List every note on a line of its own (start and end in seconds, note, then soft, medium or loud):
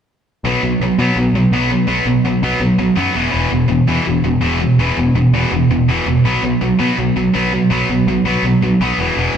0.44 0.55 B1 medium
0.44 0.62 B2 medium
0.44 0.62 F#3 medium
0.44 0.62 B3 medium
0.63 0.74 B1 medium
0.63 0.79 B2 medium
0.63 0.79 F#3 medium
0.80 0.91 B1 medium
0.80 0.97 B2 medium
0.80 0.98 F#3 medium
0.98 1.09 B2 medium
0.98 1.16 B2 medium
0.98 1.16 F#3 medium
0.98 1.16 B3 medium
1.16 1.27 B1 medium
1.16 1.33 B2 medium
1.16 1.33 F#3 medium
1.33 1.45 B1 medium
1.33 1.51 B2 medium
1.33 1.51 F#3 medium
1.51 1.74 B1 medium
1.51 1.70 B2 medium
1.51 1.70 F#3 loud
1.51 1.70 B3 medium
1.71 1.87 B2 medium
1.71 1.87 F#3 medium
1.88 1.99 B1 medium
1.88 2.05 B2 medium
1.88 2.06 F#3 medium
1.88 2.06 B3 medium
2.06 2.17 B1 medium
2.06 2.23 B2 medium
2.06 2.23 F#3 medium
2.24 2.35 B1 medium
2.24 2.41 B2 medium
2.24 2.42 F#3 medium
2.42 2.53 B1 medium
2.42 2.59 B2 medium
2.42 2.60 F#3 medium
2.42 2.61 B3 medium
2.60 2.71 B1 medium
2.60 2.77 B2 medium
2.60 2.77 F#3 medium
2.79 2.90 B1 medium
2.79 2.95 B2 medium
2.79 2.95 F#3 medium
2.96 3.08 F#2 medium
2.96 3.13 B2 medium
2.96 3.14 F#3 loud
2.96 3.14 B3 loud
3.14 3.26 E1 medium
3.14 3.30 E2 medium
3.14 3.31 B2 medium
3.14 3.32 E3 loud
3.31 3.45 E1 medium
3.31 3.50 E2 medium
3.31 3.50 B2 medium
3.31 3.50 E3 loud
3.51 3.63 E1 medium
3.51 3.67 E2 medium
3.51 3.68 B2 medium
3.69 3.81 E1 medium
3.69 3.86 E2 medium
3.69 3.86 B2 medium
3.88 3.99 E2 medium
3.88 4.05 E2 medium
3.88 4.06 B2 medium
3.88 4.06 E3 loud
4.06 4.18 E1 medium
4.06 4.23 E2 medium
4.06 4.23 B2 medium
4.24 4.36 E1 medium
4.24 4.40 E2 medium
4.24 4.40 B2 medium
4.41 4.65 E1 medium
4.41 4.59 E2 medium
4.41 4.59 B2 loud
4.41 4.60 E3 loud
4.61 4.77 E2 medium
4.61 4.77 B2 medium
4.79 4.90 E1 medium
4.79 4.96 E2 medium
4.79 4.96 B2 medium
4.79 4.97 E3 medium
4.97 5.08 E1 medium
4.97 5.14 E2 medium
4.97 5.14 B2 medium
5.15 5.26 E1 medium
5.15 5.32 E2 medium
5.15 5.32 B2 medium
5.33 5.44 E1 medium
5.33 5.51 E2 medium
5.33 5.51 B2 medium
5.33 5.51 E3 medium
5.52 5.63 E1 medium
5.52 5.68 E2 medium
5.52 5.69 B2 medium
5.69 5.81 E1 medium
5.69 5.87 E2 medium
5.69 5.87 B2 medium
5.88 5.99 E1 medium
5.88 6.05 E2 medium
5.88 6.06 B2 medium
5.88 6.06 E3 loud
6.06 6.17 E1 medium
6.06 6.23 E2 medium
6.06 6.23 B2 medium
6.25 6.36 B1 medium
6.25 6.42 B2 medium
6.25 6.42 F#3 medium
6.25 6.43 B3 loud
6.43 6.54 B1 medium
6.43 6.59 B2 medium
6.43 6.59 F#3 medium
6.61 6.73 B1 medium
6.61 6.78 B2 medium
6.61 6.78 F#3 medium
6.79 6.96 B2 medium
6.79 6.91 B2 medium
6.79 6.96 F#3 medium
6.79 6.97 B3 medium
6.97 7.09 B1 medium
6.97 7.14 B2 medium
6.97 7.14 F#3 medium
7.16 7.27 B1 medium
7.16 7.32 B2 medium
7.16 7.32 F#3 medium
7.34 7.57 B1 medium
7.34 7.51 B2 medium
7.34 7.51 F#3 loud
7.34 7.51 B3 loud
7.52 7.69 B2 medium
7.52 7.69 F#3 medium
7.70 7.82 B1 medium
7.70 7.87 B2 medium
7.70 7.88 F#3 medium
7.70 7.88 B3 medium
7.89 8.00 B1 medium
7.89 8.05 B2 medium
7.89 8.06 F#3 medium
8.07 8.18 B1 medium
8.07 8.24 B2 medium
8.07 8.24 F#3 medium
8.24 8.36 B1 medium
8.24 8.42 B2 medium
8.24 8.43 F#3 medium
8.24 8.43 B3 medium
8.43 8.54 B1 medium
8.43 8.60 B2 medium
8.43 8.61 F#3 medium
8.62 8.73 B1 medium
8.62 8.78 B2 medium
8.62 8.79 F#3 medium
8.81 8.91 B1 medium
8.81 8.97 B2 medium
8.81 8.98 F#3 medium
8.81 8.98 B3 loud
8.98 9.09 E1 medium
8.98 9.15 E2 medium
8.98 9.16 B2 medium
8.98 9.16 E3 loud
9.17 9.28 E1 medium
9.17 9.34 E2 medium
9.17 9.34 B2 medium
9.17 9.34 E3 medium